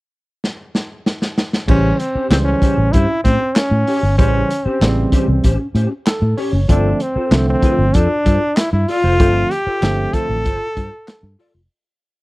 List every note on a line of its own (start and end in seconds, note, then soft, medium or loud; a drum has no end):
0.44 snare medium
0.75 snare medium
1.06 snare medium
1.22 snare medium
1.38 snare medium
1.53 snare medium
1.68 1.91 A1 loud
1.68 1.98 C#3 medium
1.68 1.99 E3 medium
1.68 1.99 G3 medium
1.68 2.00 C#4 medium
1.68 1.89 C#4 medium
1.68 1.90 G4 medium
1.68 1.99 C5 medium
1.68 1.90 C5 medium
1.68 kick loud
1.68 crash medium
1.98 2.30 C4 medium
1.98 muted clean electric guitar stroke soft
1.98 closed hi-hat medium
2.15 2.32 C#4 medium
2.15 2.32 G4 medium
2.15 2.32 C5 medium
2.15 muted fingered electric bass stroke soft
2.30 2.54 C#2 medium
2.30 2.92 C#3 medium
2.30 2.92 E3 medium
2.30 2.92 G3 medium
2.30 2.37 C4 medium
2.30 2.92 C5 medium
2.30 snare loud
2.30 clap medium
2.30 closed hi-hat medium
2.45 2.93 C#4 medium
2.45 muted clean electric guitar stroke soft
2.62 2.83 C#4 medium
2.62 2.78 G4 medium
2.62 2.77 C5 medium
2.62 kick medium
2.62 closed hi-hat medium
2.78 2.89 A1 medium
2.78 muted clean electric guitar stroke soft
2.92 3.05 G2 medium
2.92 3.15 C#4 medium
2.92 3.23 E4 loud
2.92 3.10 G4 medium
2.92 3.09 C5 medium
2.92 kick loud
2.92 closed hi-hat medium
3.10 muted clean electric guitar stroke soft
3.24 3.36 A2 medium
3.24 3.57 C4 loud
3.24 3.41 C#4 medium
3.24 3.41 G4 medium
3.24 3.39 C5 medium
3.24 kick medium
3.24 closed hi-hat medium
3.41 muted clean electric guitar stroke soft
3.55 4.17 C#4 medium
3.55 muted clean electric guitar stroke soft
3.55 snare loud
3.55 clap medium
3.55 closed hi-hat medium
3.71 3.83 A2 loud
3.71 muted clean electric guitar stroke soft
3.87 4.08 C#4 medium
3.87 4.03 G4 medium
3.87 4.02 C#5 medium
3.87 open hi-hat medium
4.03 4.19 G1 medium
4.03 muted clean electric guitar stroke medium
4.18 4.42 A1 medium
4.18 4.49 C#3 medium
4.18 4.49 E3 medium
4.18 4.49 G3 medium
4.18 4.39 C#4 medium
4.18 4.67 C#4 loud
4.18 4.40 G4 medium
4.18 4.50 C5 medium
4.18 4.40 C5 medium
4.18 kick loud
4.18 closed hi-hat medium
4.50 muted clean electric guitar stroke soft
4.50 closed hi-hat medium
4.65 5.59 C4 medium
4.65 4.83 C#4 soft
4.65 4.82 G4 soft
4.65 4.82 C5 medium
4.65 muted fingered electric bass stroke medium
4.81 5.04 A1 medium
4.81 5.42 C#3 medium
4.81 5.42 E3 medium
4.81 5.42 G3 medium
4.81 4.88 B3 medium
4.81 snare loud
4.81 clap medium
4.81 closed hi-hat medium
4.89 5.46 C4 medium
4.97 muted clean electric guitar stroke medium
5.12 5.34 C#4 medium
5.12 5.29 G4 medium
5.12 5.28 C5 medium
5.12 kick medium
5.12 closed hi-hat medium
5.28 5.40 C2 medium
5.28 muted clean electric guitar stroke soft
5.44 5.56 A1 loud
5.44 5.65 C#4 medium
5.44 5.60 G4 medium
5.44 5.59 C5 medium
5.44 kick medium
5.44 closed hi-hat medium
5.60 muted clean electric guitar stroke medium
5.75 5.86 A2 medium
5.75 5.92 C#4 medium
5.75 5.91 G4 medium
5.75 5.90 C5 medium
5.75 closed hi-hat medium
5.91 muted clean electric guitar stroke soft
6.06 6.36 A4 medium
6.06 muted clean electric guitar stroke soft
6.06 snare loud
6.06 clap loud
6.06 closed hi-hat medium
6.22 6.33 A2 loud
6.22 muted clean electric guitar stroke soft
6.37 6.59 C#4 medium
6.37 6.54 G4 medium
6.37 6.67 C#5 medium
6.37 6.53 C#5 medium
6.37 open hi-hat medium
6.53 6.64 F#1 medium
6.53 muted clean electric guitar stroke soft
6.68 6.92 G1 loud
6.68 6.99 D3 medium
6.68 6.99 F3 medium
6.68 7.00 A3 medium
6.68 7.00 C4 medium
6.68 7.03 D4 medium
6.68 6.90 F4 medium
6.68 6.91 A4 medium
6.68 6.91 C5 medium
6.68 kick loud
6.68 closed hi-hat loud
7.00 7.48 C4 medium
7.00 muted clean electric guitar stroke soft
7.00 closed hi-hat medium
7.16 7.33 F4 soft
7.16 7.33 A4 medium
7.16 7.32 C5 medium
7.16 muted fingered electric bass stroke medium
7.31 7.54 C2 medium
7.31 7.92 D3 medium
7.31 7.93 F3 medium
7.31 7.93 A3 medium
7.31 7.93 C4 medium
7.31 snare loud
7.31 clap medium
7.31 closed hi-hat medium
7.47 7.97 C4 medium
7.47 muted clean electric guitar stroke soft
7.62 7.84 F4 medium
7.62 7.79 A4 medium
7.62 7.77 C5 medium
7.62 kick medium
7.62 closed hi-hat medium
7.79 7.90 G1 loud
7.79 muted clean electric guitar stroke soft
7.94 8.06 F2 loud
7.94 8.59 D4 loud
7.94 8.15 F4 medium
7.94 8.10 A4 medium
7.94 8.08 C5 medium
7.94 kick medium
7.94 closed hi-hat medium
8.10 muted clean electric guitar stroke soft
8.26 8.37 G2 loud
8.26 8.42 F4 medium
8.26 8.41 A4 medium
8.26 8.40 C5 medium
8.26 kick medium
8.26 closed hi-hat medium
8.41 muted clean electric guitar stroke medium
8.57 8.72 E4 medium
8.57 muted clean electric guitar stroke soft
8.57 snare loud
8.57 clap loud
8.57 closed hi-hat medium
8.73 8.84 G2 medium
8.73 8.90 E4 medium
8.73 muted clean electric guitar stroke medium
8.88 9.53 F4 loud
8.88 9.04 F4 medium
8.88 9.04 A4 medium
8.88 9.03 D5 medium
8.88 open hi-hat medium
9.04 9.20 F1 medium
9.04 9.18 F4 medium
9.04 9.19 A4 medium
9.04 9.20 C5 medium
9.19 9.43 G1 loud
9.19 9.50 D3 medium
9.19 9.50 F3 medium
9.19 9.50 A3 medium
9.19 9.51 C4 medium
9.19 9.41 F4 loud
9.19 9.41 A4 medium
9.19 9.41 C5 loud
9.19 kick loud
9.19 closed hi-hat loud
9.51 10.15 G4 loud
9.51 muted clean electric guitar stroke soft
9.51 closed hi-hat medium
9.66 9.84 F4 medium
9.66 9.83 A4 medium
9.66 9.83 C5 medium
9.66 muted fingered electric bass stroke medium
9.82 10.05 G1 medium
9.82 10.43 D3 medium
9.82 10.43 F3 medium
9.82 10.44 A3 medium
9.82 10.44 C4 medium
9.82 snare loud
9.82 clap medium
9.82 closed hi-hat medium
9.98 muted clean electric guitar stroke medium
10.13 10.35 F4 medium
10.13 11.39 A4 loud
10.13 10.29 A4 medium
10.13 10.28 C5 medium
10.13 kick medium
10.13 closed hi-hat medium
10.29 10.46 A1 medium
10.29 muted clean electric guitar stroke medium
10.45 10.57 G1 loud
10.45 10.66 F4 medium
10.45 10.61 A4 medium
10.45 10.60 C5 medium
10.45 kick loud
10.45 closed hi-hat medium
10.61 muted clean electric guitar stroke medium
10.76 10.88 G2 loud
10.76 10.93 F4 medium
10.76 10.92 A4 medium
10.76 10.91 C5 medium
10.76 kick medium
10.76 closed hi-hat medium
10.92 muted clean electric guitar stroke soft
11.08 muted clean electric guitar stroke soft
11.08 snare loud
11.08 clap loud
11.08 closed hi-hat medium
11.23 11.35 G2 loud
11.23 muted clean electric guitar stroke soft
11.39 11.60 F4 medium
11.39 11.55 A4 medium
11.39 11.54 D5 medium
11.39 open hi-hat medium
11.54 11.66 F1 medium
11.54 muted clean electric guitar stroke soft